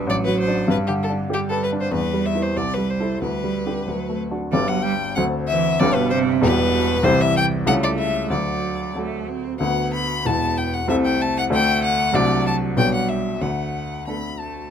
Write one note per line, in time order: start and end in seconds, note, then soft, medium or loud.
0.00 0.11 B1 medium
0.00 0.11 G3 medium
0.00 0.11 D4 medium
0.00 0.11 B4 medium
0.07 0.67 A1 medium
0.07 0.71 F#3 medium
0.07 0.16 D5 loud
0.25 0.61 F#3 medium
0.25 0.39 B4 loud
0.39 0.70 C5 loud
0.48 0.67 D4 medium
0.48 0.67 D5 medium
0.68 1.89 G2 medium
0.68 1.31 G3 medium
0.68 0.76 B4 loud
0.87 1.23 D3 medium
0.87 0.93 G4 medium
1.03 1.11 A4 loud
1.10 1.43 D4 medium
1.30 1.92 G3 medium
1.30 1.64 G4 medium
1.30 1.39 G4 loud
1.50 1.63 A4 loud
1.50 1.85 B4 medium
1.64 1.70 B4 medium
1.72 1.93 D4 medium
1.81 1.92 C5 medium
1.91 2.54 E2 medium
1.91 2.56 G3 medium
1.91 2.27 B4 loud
2.13 2.48 G3 medium
2.26 2.44 E5 medium
2.35 2.55 E4 soft
2.35 2.55 B4 soft
2.42 2.58 C5 medium
2.57 3.20 C2 medium
2.57 3.21 G3 medium
2.57 2.75 D5 medium
2.74 3.13 G3 soft
2.74 2.91 B4 medium
2.90 3.21 C5 medium
3.00 3.20 E4 soft
3.00 3.20 A4 soft
3.21 3.86 D2 medium
3.21 3.86 G3 medium
3.21 4.19 B4 medium
3.44 3.79 G3 medium
3.66 3.86 D4 soft
3.66 3.86 G4 soft
3.87 4.51 D2 medium
3.87 4.32 F#3 soft
4.09 4.45 A3 soft
4.31 4.51 D4 soft
4.31 4.51 F#4 soft
4.52 5.15 G1 medium
4.52 5.15 G2 medium
4.52 4.58 D3 medium
4.52 5.13 B3 medium
4.52 5.13 D4 medium
4.52 5.13 G4 soft
4.52 4.69 D5 loud
4.68 4.83 F#3 medium
4.68 4.84 F#5 medium
4.82 4.92 G3 medium
4.82 5.15 G5 loud
5.16 5.78 D2 medium
5.16 5.78 D3 medium
5.16 5.24 F#3 medium
5.16 5.76 C4 medium
5.16 5.76 D4 soft
5.16 5.77 A4 medium
5.16 5.24 F#5 loud
5.48 5.80 E3 medium
5.48 5.81 E5 loud
5.79 6.41 G1 medium
5.79 6.41 G2 medium
5.79 5.87 D3 loud
5.79 6.39 B3 medium
5.79 6.39 D4 medium
5.79 6.39 G4 medium
5.79 5.96 D5 loud
5.94 6.13 B2 medium
5.94 6.09 B4 loud
6.10 6.44 C3 loud
6.10 6.18 C5 loud
6.41 7.02 E1 medium
6.41 7.02 E2 medium
6.41 7.04 B2 loud
6.41 7.00 G3 medium
6.41 7.00 E4 medium
6.41 7.01 G4 medium
6.41 7.05 B4 loud
7.03 7.65 C2 medium
7.03 7.65 C3 medium
7.03 7.70 E3 medium
7.03 7.63 G3 medium
7.03 7.63 E4 medium
7.03 7.64 G4 medium
7.03 7.22 C5 loud
7.21 7.36 E5 loud
7.37 7.45 G5 loud
7.66 8.29 C#2 medium
7.66 8.29 C#3 medium
7.66 8.27 G3 medium
7.66 8.34 A3 medium
7.66 8.27 E4 medium
7.66 8.27 A4 medium
7.66 7.73 F#5 loud
7.83 7.90 D5 loud
7.98 8.29 E5 loud
8.30 9.57 D2 medium
8.30 9.57 D3 medium
8.30 8.90 F#3 medium
8.30 8.94 D5 medium
8.95 9.57 F#3 soft
8.95 9.31 A3 medium
8.95 9.57 F#4 soft
8.95 9.57 A4 medium
9.29 9.60 C4 medium
9.59 10.23 D2 medium
9.59 10.23 D3 medium
9.59 10.21 B3 soft
9.59 10.21 B3 medium
9.59 10.21 F#4 medium
9.59 10.22 B4 soft
9.59 9.90 F#5 medium
9.93 10.28 B5 loud
10.24 10.87 E1 medium
10.24 10.86 E2 medium
10.24 10.86 B3 medium
10.24 10.84 B3 medium
10.24 10.85 E4 soft
10.24 10.85 B4 soft
10.24 10.59 A5 loud
10.58 10.75 G5 medium
10.73 10.88 F#5 medium
10.87 11.49 C2 medium
10.87 11.49 C3 medium
10.87 11.49 A3 medium
10.87 11.47 C4 medium
10.87 11.47 E4 medium
10.87 11.47 A4 medium
10.87 10.95 E5 loud
11.05 11.23 G5 loud
11.22 11.36 A5 loud
11.38 11.44 F#5 loud
11.50 12.11 D2 medium
11.50 12.11 D3 medium
11.50 12.09 A3 medium
11.50 12.14 A3 medium
11.50 12.09 D4 medium
11.50 12.09 A4 medium
11.50 11.83 G5 loud
11.84 12.16 F#5 loud
12.12 12.75 C2 medium
12.12 12.75 C3 medium
12.12 12.78 F#3 medium
12.12 12.73 A3 medium
12.12 12.73 D4 medium
12.12 12.73 F#4 medium
12.12 12.46 D5 loud
12.47 12.55 A5 loud
12.76 13.40 B1 medium
12.76 13.39 B2 medium
12.76 13.41 G3 medium
12.76 13.37 B3 medium
12.76 13.38 D4 medium
12.76 13.38 G4 soft
12.76 12.93 G5 loud
12.94 13.10 F#5 medium
13.09 13.42 E5 medium
13.41 14.69 D2 medium
13.41 14.69 D3 medium
13.41 14.06 A3 soft
13.41 14.06 F#5 medium
14.06 14.69 A3 soft
14.06 14.16 B3 soft
14.06 14.69 D4 soft
14.06 14.69 A4 soft
14.06 14.41 B5 medium
14.39 14.70 A3 soft
14.39 14.70 A5 medium